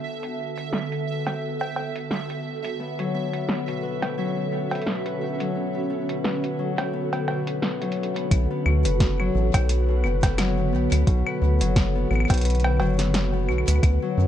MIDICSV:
0, 0, Header, 1, 6, 480
1, 0, Start_track
1, 0, Key_signature, 2, "minor"
1, 0, Tempo, 689655
1, 26, Time_signature, 4, 2, 24, 8
1, 9935, End_track
2, 0, Start_track
2, 0, Title_t, "Synth texture"
2, 0, Program_c, 0, 99
2, 0, Note_on_c, 0, 76, 80
2, 5797, Note_off_c, 0, 76, 0
2, 9935, End_track
3, 0, Start_track
3, 0, Title_t, "Ambient pad"
3, 0, Program_c, 1, 92
3, 0, Note_on_c, 1, 50, 69
3, 0, Note_on_c, 1, 59, 74
3, 0, Note_on_c, 1, 66, 82
3, 0, Note_on_c, 1, 69, 87
3, 2364, Note_on_c, 1, 61, 81
3, 3180, Note_off_c, 1, 59, 0
3, 5943, Note_on_c, 1, 59, 88
3, 6403, Note_off_c, 1, 61, 0
3, 9860, Note_on_c, 1, 61, 87
3, 9935, Note_off_c, 1, 50, 0
3, 9935, Note_off_c, 1, 59, 0
3, 9935, Note_off_c, 1, 61, 0
3, 9935, Note_off_c, 1, 66, 0
3, 9935, Note_off_c, 1, 69, 0
3, 9935, End_track
4, 0, Start_track
4, 0, Title_t, "Harp"
4, 0, Program_c, 2, 46
4, 1946, Note_on_c, 2, 59, 75
4, 2080, Note_on_c, 2, 54, 92
4, 2183, Note_off_c, 2, 59, 0
4, 2186, Note_on_c, 2, 59, 72
4, 2318, Note_off_c, 2, 59, 0
4, 2321, Note_on_c, 2, 59, 90
4, 2423, Note_off_c, 2, 59, 0
4, 2426, Note_on_c, 2, 59, 97
4, 2561, Note_on_c, 2, 47, 72
4, 2666, Note_on_c, 2, 71, 94
4, 2798, Note_off_c, 2, 59, 0
4, 2801, Note_on_c, 2, 59, 72
4, 2898, Note_off_c, 2, 54, 0
4, 2907, Note_on_c, 2, 54, 93
4, 3038, Note_off_c, 2, 59, 0
4, 3041, Note_on_c, 2, 59, 70
4, 3143, Note_off_c, 2, 59, 0
4, 3146, Note_on_c, 2, 59, 92
4, 3278, Note_off_c, 2, 59, 0
4, 3281, Note_on_c, 2, 59, 94
4, 3378, Note_off_c, 2, 47, 0
4, 3386, Note_on_c, 2, 47, 77
4, 3518, Note_off_c, 2, 71, 0
4, 3520, Note_on_c, 2, 71, 97
4, 3623, Note_off_c, 2, 59, 0
4, 3626, Note_on_c, 2, 59, 73
4, 3752, Note_off_c, 2, 54, 0
4, 3760, Note_on_c, 2, 54, 98
4, 3863, Note_off_c, 2, 59, 0
4, 3866, Note_on_c, 2, 59, 76
4, 3997, Note_off_c, 2, 59, 0
4, 4000, Note_on_c, 2, 59, 93
4, 4103, Note_off_c, 2, 59, 0
4, 4106, Note_on_c, 2, 59, 93
4, 4232, Note_off_c, 2, 47, 0
4, 4241, Note_on_c, 2, 47, 68
4, 4343, Note_off_c, 2, 71, 0
4, 4346, Note_on_c, 2, 71, 96
4, 4478, Note_off_c, 2, 59, 0
4, 4480, Note_on_c, 2, 59, 73
4, 4577, Note_off_c, 2, 54, 0
4, 4586, Note_on_c, 2, 54, 93
4, 4717, Note_off_c, 2, 59, 0
4, 4720, Note_on_c, 2, 59, 73
4, 4823, Note_off_c, 2, 59, 0
4, 4826, Note_on_c, 2, 59, 96
4, 4957, Note_off_c, 2, 59, 0
4, 4960, Note_on_c, 2, 59, 95
4, 5057, Note_off_c, 2, 47, 0
4, 5066, Note_on_c, 2, 47, 72
4, 5197, Note_off_c, 2, 71, 0
4, 5200, Note_on_c, 2, 71, 92
4, 5303, Note_off_c, 2, 59, 0
4, 5305, Note_on_c, 2, 59, 76
4, 5432, Note_off_c, 2, 54, 0
4, 5440, Note_on_c, 2, 54, 93
4, 5543, Note_off_c, 2, 59, 0
4, 5545, Note_on_c, 2, 59, 73
4, 5677, Note_off_c, 2, 59, 0
4, 5680, Note_on_c, 2, 59, 100
4, 5783, Note_off_c, 2, 59, 0
4, 5786, Note_on_c, 2, 59, 101
4, 5821, Note_off_c, 2, 47, 0
4, 5821, Note_off_c, 2, 54, 0
4, 5917, Note_off_c, 2, 59, 0
4, 5920, Note_on_c, 2, 59, 100
4, 6026, Note_on_c, 2, 47, 77
4, 6157, Note_off_c, 2, 71, 0
4, 6160, Note_on_c, 2, 71, 100
4, 6263, Note_off_c, 2, 59, 0
4, 6266, Note_on_c, 2, 59, 83
4, 6400, Note_on_c, 2, 54, 103
4, 6503, Note_off_c, 2, 59, 0
4, 6506, Note_on_c, 2, 59, 78
4, 6637, Note_off_c, 2, 59, 0
4, 6640, Note_on_c, 2, 59, 100
4, 6743, Note_off_c, 2, 59, 0
4, 6745, Note_on_c, 2, 59, 101
4, 6872, Note_off_c, 2, 47, 0
4, 6880, Note_on_c, 2, 47, 75
4, 6983, Note_off_c, 2, 71, 0
4, 6986, Note_on_c, 2, 71, 101
4, 7117, Note_off_c, 2, 59, 0
4, 7120, Note_on_c, 2, 59, 75
4, 7217, Note_off_c, 2, 54, 0
4, 7225, Note_on_c, 2, 54, 103
4, 7357, Note_off_c, 2, 59, 0
4, 7360, Note_on_c, 2, 59, 77
4, 7463, Note_off_c, 2, 59, 0
4, 7465, Note_on_c, 2, 59, 104
4, 7597, Note_off_c, 2, 59, 0
4, 7600, Note_on_c, 2, 59, 106
4, 7697, Note_off_c, 2, 47, 0
4, 7706, Note_on_c, 2, 47, 85
4, 7837, Note_off_c, 2, 71, 0
4, 7840, Note_on_c, 2, 71, 102
4, 7943, Note_off_c, 2, 59, 0
4, 7946, Note_on_c, 2, 59, 77
4, 8072, Note_off_c, 2, 54, 0
4, 8080, Note_on_c, 2, 54, 96
4, 8183, Note_off_c, 2, 59, 0
4, 8186, Note_on_c, 2, 59, 84
4, 8317, Note_off_c, 2, 59, 0
4, 8320, Note_on_c, 2, 59, 104
4, 8423, Note_off_c, 2, 59, 0
4, 8426, Note_on_c, 2, 59, 102
4, 8552, Note_off_c, 2, 47, 0
4, 8560, Note_on_c, 2, 47, 80
4, 8663, Note_off_c, 2, 71, 0
4, 8666, Note_on_c, 2, 71, 103
4, 8797, Note_off_c, 2, 59, 0
4, 8800, Note_on_c, 2, 59, 78
4, 8898, Note_off_c, 2, 54, 0
4, 8906, Note_on_c, 2, 54, 101
4, 9038, Note_off_c, 2, 59, 0
4, 9040, Note_on_c, 2, 59, 78
4, 9143, Note_off_c, 2, 59, 0
4, 9146, Note_on_c, 2, 59, 102
4, 9278, Note_off_c, 2, 59, 0
4, 9280, Note_on_c, 2, 59, 100
4, 9377, Note_off_c, 2, 47, 0
4, 9386, Note_on_c, 2, 47, 78
4, 9518, Note_off_c, 2, 71, 0
4, 9520, Note_on_c, 2, 71, 108
4, 9623, Note_off_c, 2, 59, 0
4, 9626, Note_on_c, 2, 59, 83
4, 9661, Note_off_c, 2, 47, 0
4, 9661, Note_off_c, 2, 54, 0
4, 9760, Note_on_c, 2, 54, 104
4, 9863, Note_off_c, 2, 59, 0
4, 9866, Note_on_c, 2, 59, 76
4, 9935, Note_off_c, 2, 54, 0
4, 9935, Note_off_c, 2, 59, 0
4, 9935, Note_off_c, 2, 71, 0
4, 9935, End_track
5, 0, Start_track
5, 0, Title_t, "Analog synth bass"
5, 0, Program_c, 3, 38
5, 5786, Note_on_c, 3, 35, 99
5, 5895, Note_off_c, 3, 35, 0
5, 6026, Note_on_c, 3, 38, 81
5, 6160, Note_on_c, 3, 30, 83
5, 6171, Note_off_c, 3, 38, 0
5, 6474, Note_off_c, 3, 30, 0
5, 6506, Note_on_c, 3, 33, 89
5, 6615, Note_off_c, 3, 33, 0
5, 6640, Note_on_c, 3, 35, 102
5, 6986, Note_on_c, 3, 30, 101
5, 6996, Note_off_c, 3, 35, 0
5, 7466, Note_on_c, 3, 35, 89
5, 7476, Note_off_c, 3, 30, 0
5, 7575, Note_off_c, 3, 35, 0
5, 7600, Note_on_c, 3, 38, 85
5, 7686, Note_off_c, 3, 38, 0
5, 7706, Note_on_c, 3, 35, 99
5, 7815, Note_off_c, 3, 35, 0
5, 7946, Note_on_c, 3, 38, 83
5, 8081, Note_on_c, 3, 30, 85
5, 8091, Note_off_c, 3, 38, 0
5, 8394, Note_off_c, 3, 30, 0
5, 8426, Note_on_c, 3, 33, 90
5, 8535, Note_off_c, 3, 33, 0
5, 8560, Note_on_c, 3, 35, 104
5, 8906, Note_on_c, 3, 30, 105
5, 8916, Note_off_c, 3, 35, 0
5, 9386, Note_on_c, 3, 35, 92
5, 9397, Note_off_c, 3, 30, 0
5, 9495, Note_off_c, 3, 35, 0
5, 9521, Note_on_c, 3, 38, 86
5, 9606, Note_off_c, 3, 38, 0
5, 9626, Note_on_c, 3, 38, 100
5, 9735, Note_off_c, 3, 38, 0
5, 9866, Note_on_c, 3, 42, 83
5, 9935, Note_off_c, 3, 42, 0
5, 9935, End_track
6, 0, Start_track
6, 0, Title_t, "Drums"
6, 160, Note_on_c, 9, 42, 51
6, 230, Note_off_c, 9, 42, 0
6, 401, Note_on_c, 9, 42, 62
6, 470, Note_off_c, 9, 42, 0
6, 506, Note_on_c, 9, 38, 116
6, 576, Note_off_c, 9, 38, 0
6, 641, Note_on_c, 9, 42, 35
6, 710, Note_off_c, 9, 42, 0
6, 881, Note_on_c, 9, 38, 58
6, 881, Note_on_c, 9, 42, 63
6, 881, Note_on_c, 9, 56, 82
6, 950, Note_off_c, 9, 38, 0
6, 950, Note_off_c, 9, 42, 0
6, 950, Note_off_c, 9, 56, 0
6, 1121, Note_on_c, 9, 56, 82
6, 1190, Note_off_c, 9, 56, 0
6, 1226, Note_on_c, 9, 56, 81
6, 1296, Note_off_c, 9, 56, 0
6, 1361, Note_on_c, 9, 42, 62
6, 1430, Note_off_c, 9, 42, 0
6, 1466, Note_on_c, 9, 38, 109
6, 1536, Note_off_c, 9, 38, 0
6, 1601, Note_on_c, 9, 42, 49
6, 1670, Note_off_c, 9, 42, 0
6, 1841, Note_on_c, 9, 42, 64
6, 1911, Note_off_c, 9, 42, 0
6, 2081, Note_on_c, 9, 42, 50
6, 2151, Note_off_c, 9, 42, 0
6, 2321, Note_on_c, 9, 42, 59
6, 2390, Note_off_c, 9, 42, 0
6, 2426, Note_on_c, 9, 38, 117
6, 2496, Note_off_c, 9, 38, 0
6, 2561, Note_on_c, 9, 42, 35
6, 2631, Note_off_c, 9, 42, 0
6, 2801, Note_on_c, 9, 38, 61
6, 2801, Note_on_c, 9, 42, 63
6, 2801, Note_on_c, 9, 56, 81
6, 2870, Note_off_c, 9, 38, 0
6, 2870, Note_off_c, 9, 42, 0
6, 2870, Note_off_c, 9, 56, 0
6, 3281, Note_on_c, 9, 42, 59
6, 3281, Note_on_c, 9, 56, 79
6, 3306, Note_off_c, 9, 42, 0
6, 3306, Note_on_c, 9, 42, 47
6, 3350, Note_off_c, 9, 56, 0
6, 3351, Note_off_c, 9, 42, 0
6, 3351, Note_on_c, 9, 42, 40
6, 3386, Note_on_c, 9, 38, 114
6, 3421, Note_off_c, 9, 42, 0
6, 3456, Note_off_c, 9, 38, 0
6, 3520, Note_on_c, 9, 42, 51
6, 3590, Note_off_c, 9, 42, 0
6, 3761, Note_on_c, 9, 42, 65
6, 3830, Note_off_c, 9, 42, 0
6, 4241, Note_on_c, 9, 42, 59
6, 4310, Note_off_c, 9, 42, 0
6, 4346, Note_on_c, 9, 38, 117
6, 4416, Note_off_c, 9, 38, 0
6, 4481, Note_on_c, 9, 42, 33
6, 4550, Note_off_c, 9, 42, 0
6, 4720, Note_on_c, 9, 38, 60
6, 4720, Note_on_c, 9, 42, 61
6, 4720, Note_on_c, 9, 56, 84
6, 4790, Note_off_c, 9, 38, 0
6, 4790, Note_off_c, 9, 42, 0
6, 4790, Note_off_c, 9, 56, 0
6, 4961, Note_on_c, 9, 42, 35
6, 4961, Note_on_c, 9, 56, 85
6, 5030, Note_off_c, 9, 42, 0
6, 5030, Note_off_c, 9, 56, 0
6, 5066, Note_on_c, 9, 56, 81
6, 5136, Note_off_c, 9, 56, 0
6, 5200, Note_on_c, 9, 42, 60
6, 5270, Note_off_c, 9, 42, 0
6, 5306, Note_on_c, 9, 38, 114
6, 5376, Note_off_c, 9, 38, 0
6, 5440, Note_on_c, 9, 42, 46
6, 5510, Note_off_c, 9, 42, 0
6, 5511, Note_on_c, 9, 42, 37
6, 5580, Note_off_c, 9, 42, 0
6, 5591, Note_on_c, 9, 42, 32
6, 5661, Note_off_c, 9, 42, 0
6, 5681, Note_on_c, 9, 42, 62
6, 5750, Note_off_c, 9, 42, 0
6, 5786, Note_on_c, 9, 36, 107
6, 5786, Note_on_c, 9, 42, 56
6, 5786, Note_on_c, 9, 75, 55
6, 5855, Note_off_c, 9, 36, 0
6, 5856, Note_off_c, 9, 42, 0
6, 5856, Note_off_c, 9, 75, 0
6, 6026, Note_on_c, 9, 75, 83
6, 6096, Note_off_c, 9, 75, 0
6, 6161, Note_on_c, 9, 42, 67
6, 6230, Note_off_c, 9, 42, 0
6, 6266, Note_on_c, 9, 36, 119
6, 6266, Note_on_c, 9, 38, 122
6, 6266, Note_on_c, 9, 42, 56
6, 6335, Note_off_c, 9, 36, 0
6, 6336, Note_off_c, 9, 38, 0
6, 6336, Note_off_c, 9, 42, 0
6, 6401, Note_on_c, 9, 75, 56
6, 6470, Note_off_c, 9, 75, 0
6, 6640, Note_on_c, 9, 36, 108
6, 6641, Note_on_c, 9, 42, 69
6, 6641, Note_on_c, 9, 56, 95
6, 6641, Note_on_c, 9, 75, 83
6, 6710, Note_off_c, 9, 36, 0
6, 6710, Note_off_c, 9, 42, 0
6, 6710, Note_off_c, 9, 56, 0
6, 6710, Note_off_c, 9, 75, 0
6, 6746, Note_on_c, 9, 42, 57
6, 6816, Note_off_c, 9, 42, 0
6, 6986, Note_on_c, 9, 75, 56
6, 7056, Note_off_c, 9, 75, 0
6, 7120, Note_on_c, 9, 36, 103
6, 7121, Note_on_c, 9, 38, 61
6, 7121, Note_on_c, 9, 42, 67
6, 7121, Note_on_c, 9, 56, 91
6, 7190, Note_off_c, 9, 36, 0
6, 7190, Note_off_c, 9, 38, 0
6, 7190, Note_off_c, 9, 42, 0
6, 7190, Note_off_c, 9, 56, 0
6, 7226, Note_on_c, 9, 38, 121
6, 7226, Note_on_c, 9, 42, 53
6, 7226, Note_on_c, 9, 75, 82
6, 7295, Note_off_c, 9, 38, 0
6, 7295, Note_off_c, 9, 42, 0
6, 7295, Note_off_c, 9, 75, 0
6, 7601, Note_on_c, 9, 42, 69
6, 7601, Note_on_c, 9, 75, 56
6, 7670, Note_off_c, 9, 42, 0
6, 7670, Note_off_c, 9, 75, 0
6, 7706, Note_on_c, 9, 36, 110
6, 7706, Note_on_c, 9, 42, 55
6, 7776, Note_off_c, 9, 36, 0
6, 7776, Note_off_c, 9, 42, 0
6, 7841, Note_on_c, 9, 75, 79
6, 7910, Note_off_c, 9, 75, 0
6, 8080, Note_on_c, 9, 42, 67
6, 8150, Note_off_c, 9, 42, 0
6, 8186, Note_on_c, 9, 36, 124
6, 8186, Note_on_c, 9, 38, 125
6, 8186, Note_on_c, 9, 42, 57
6, 8186, Note_on_c, 9, 75, 54
6, 8256, Note_off_c, 9, 36, 0
6, 8256, Note_off_c, 9, 38, 0
6, 8256, Note_off_c, 9, 42, 0
6, 8256, Note_off_c, 9, 75, 0
6, 8426, Note_on_c, 9, 75, 36
6, 8460, Note_off_c, 9, 75, 0
6, 8460, Note_on_c, 9, 75, 47
6, 8493, Note_off_c, 9, 75, 0
6, 8493, Note_on_c, 9, 75, 56
6, 8527, Note_off_c, 9, 75, 0
6, 8527, Note_on_c, 9, 75, 65
6, 8560, Note_on_c, 9, 36, 113
6, 8561, Note_on_c, 9, 42, 67
6, 8561, Note_on_c, 9, 56, 92
6, 8587, Note_off_c, 9, 42, 0
6, 8587, Note_on_c, 9, 42, 55
6, 8596, Note_off_c, 9, 75, 0
6, 8613, Note_off_c, 9, 42, 0
6, 8613, Note_on_c, 9, 42, 45
6, 8630, Note_off_c, 9, 36, 0
6, 8630, Note_off_c, 9, 56, 0
6, 8640, Note_off_c, 9, 42, 0
6, 8640, Note_on_c, 9, 42, 37
6, 8666, Note_off_c, 9, 42, 0
6, 8666, Note_on_c, 9, 42, 57
6, 8700, Note_off_c, 9, 42, 0
6, 8700, Note_on_c, 9, 42, 25
6, 8733, Note_off_c, 9, 42, 0
6, 8733, Note_on_c, 9, 42, 20
6, 8767, Note_off_c, 9, 42, 0
6, 8767, Note_on_c, 9, 42, 16
6, 8800, Note_on_c, 9, 56, 91
6, 8800, Note_on_c, 9, 75, 54
6, 8837, Note_off_c, 9, 42, 0
6, 8870, Note_off_c, 9, 56, 0
6, 8870, Note_off_c, 9, 75, 0
6, 8906, Note_on_c, 9, 56, 90
6, 8975, Note_off_c, 9, 56, 0
6, 9040, Note_on_c, 9, 38, 62
6, 9040, Note_on_c, 9, 42, 70
6, 9110, Note_off_c, 9, 38, 0
6, 9110, Note_off_c, 9, 42, 0
6, 9146, Note_on_c, 9, 38, 122
6, 9146, Note_on_c, 9, 42, 56
6, 9216, Note_off_c, 9, 38, 0
6, 9216, Note_off_c, 9, 42, 0
6, 9386, Note_on_c, 9, 75, 51
6, 9453, Note_off_c, 9, 75, 0
6, 9453, Note_on_c, 9, 75, 43
6, 9521, Note_off_c, 9, 75, 0
6, 9521, Note_on_c, 9, 42, 71
6, 9521, Note_on_c, 9, 75, 35
6, 9521, Note_on_c, 9, 82, 76
6, 9574, Note_off_c, 9, 75, 0
6, 9574, Note_on_c, 9, 75, 28
6, 9590, Note_off_c, 9, 42, 0
6, 9590, Note_off_c, 9, 82, 0
6, 9626, Note_on_c, 9, 36, 111
6, 9627, Note_off_c, 9, 75, 0
6, 9627, Note_on_c, 9, 42, 54
6, 9627, Note_on_c, 9, 75, 77
6, 9696, Note_off_c, 9, 36, 0
6, 9696, Note_off_c, 9, 42, 0
6, 9696, Note_off_c, 9, 75, 0
6, 9935, End_track
0, 0, End_of_file